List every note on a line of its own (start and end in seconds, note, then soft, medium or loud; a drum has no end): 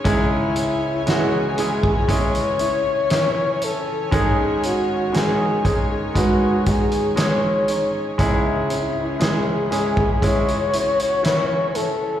0.00 1.52 G#3 medium
0.00 0.16 C#4 medium
0.00 8.15 C#4 medium
0.00 0.16 D#4 medium
0.00 1.58 G#4 medium
0.00 12.20 C#5 medium
0.00 8.15 G#5 medium
0.04 4.08 C#2 medium
0.04 4.08 G#2 medium
0.04 4.12 C#3 medium
0.04 4.08 E3 medium
0.04 1.02 G#3 medium
0.04 1.02 C#4 medium
0.04 1.02 E4 medium
0.04 1.12 E4 medium
0.04 1.03 G#4 loud
0.04 kick medium
0.04 closed hi-hat medium
0.56 4.23 C#4 medium
0.56 closed hi-hat medium
1.06 1.55 G#3 medium
1.06 1.56 C#4 medium
1.06 2.59 E4 medium
1.06 1.56 E4 medium
1.06 1.56 F#4 medium
1.06 2.10 G#4 medium
1.06 snare loud
1.06 closed hi-hat medium
1.58 2.06 G#3 medium
1.58 2.07 C#4 medium
1.58 2.07 E4 medium
1.58 5.09 G#4 medium
1.58 2.07 G#4 medium
1.58 closed hi-hat medium
1.83 kick medium
2.08 3.05 G#3 medium
2.08 3.06 C#4 medium
2.08 3.06 E4 medium
2.08 3.06 G#4 medium
2.08 3.66 C#5 loud
2.08 kick medium
2.08 closed hi-hat medium
2.35 closed hi-hat soft
2.59 3.61 E4 medium
2.59 closed hi-hat medium
3.10 4.07 E3 medium
3.10 4.08 C#4 medium
3.10 4.08 E4 medium
3.10 snare loud
3.10 closed hi-hat medium
3.62 4.23 E4 medium
3.62 4.14 A4 medium
3.62 closed hi-hat medium
4.11 8.15 G#2 medium
4.11 8.20 G#2 medium
4.11 8.15 D#3 medium
4.11 5.08 G#3 medium
4.11 5.09 C#4 medium
4.11 5.09 D#4 medium
4.11 5.09 G#4 medium
4.11 4.67 G#4 medium
4.11 kick loud
4.11 closed hi-hat medium
4.63 8.30 C#4 medium
4.63 5.17 F#4 medium
4.63 closed hi-hat medium
5.12 5.62 G#3 medium
5.12 5.62 C#4 medium
5.12 5.62 D#4 medium
5.12 6.67 D#4 medium
5.12 5.63 G#4 medium
5.12 5.90 G#4 medium
5.12 snare medium
5.12 closed hi-hat medium
5.64 6.13 G#3 medium
5.64 6.13 C#4 medium
5.64 6.13 D#4 medium
5.64 6.14 G#4 medium
5.64 7.18 G#4 medium
5.64 kick medium
5.64 closed hi-hat medium
6.14 7.12 G#3 medium
6.14 9.67 G#3 medium
6.14 7.12 C#4 medium
6.14 7.13 D#4 medium
6.14 6.69 F#4 medium
6.14 7.13 B4 medium
6.14 kick medium
6.14 closed hi-hat medium
6.66 7.69 D#4 medium
6.66 7.21 G#4 medium
6.66 kick medium
6.66 closed hi-hat medium
6.92 closed hi-hat medium
7.16 8.13 G#3 medium
7.16 8.14 C#4 medium
7.16 8.14 D#4 medium
7.16 8.14 G#4 medium
7.16 9.72 G#4 medium
7.16 7.95 C#5 medium
7.16 snare loud
7.16 closed hi-hat medium
7.68 8.30 D#4 medium
7.68 closed hi-hat medium
8.18 12.20 C#2 medium
8.18 12.20 G#2 medium
8.18 12.20 C#3 medium
8.18 12.20 E3 medium
8.18 9.15 G#3 medium
8.18 9.16 C#4 medium
8.18 12.20 C#4 medium
8.18 9.16 E4 medium
8.18 9.24 E4 medium
8.18 9.16 G#4 medium
8.18 10.21 G#4 medium
8.18 kick medium
8.18 closed hi-hat medium
8.70 12.20 C#4 medium
8.70 closed hi-hat medium
9.19 9.68 G#3 medium
9.19 9.69 C#4 medium
9.19 9.69 E4 medium
9.19 10.73 E4 medium
9.19 9.70 G#4 medium
9.19 10.26 G#4 medium
9.19 snare loud
9.19 closed hi-hat medium
9.71 10.20 G#3 medium
9.71 10.20 C#4 medium
9.71 10.20 E4 medium
9.71 10.20 G#4 medium
9.71 12.20 G#4 medium
9.71 closed hi-hat medium
9.97 kick medium
10.22 11.19 G#3 medium
10.22 11.19 C#4 medium
10.22 11.20 E4 medium
10.22 12.20 F#4 medium
10.22 11.20 G#4 medium
10.22 11.78 C#5 loud
10.22 kick medium
10.22 closed hi-hat medium
10.48 closed hi-hat soft
10.73 11.74 E4 medium
10.73 closed hi-hat medium
10.99 closed hi-hat medium
11.23 12.20 E3 medium
11.23 12.20 C#4 medium
11.23 12.20 E4 medium
11.23 snare loud
11.23 closed hi-hat medium
11.75 12.20 E4 medium
11.75 12.20 A4 medium
11.75 closed hi-hat medium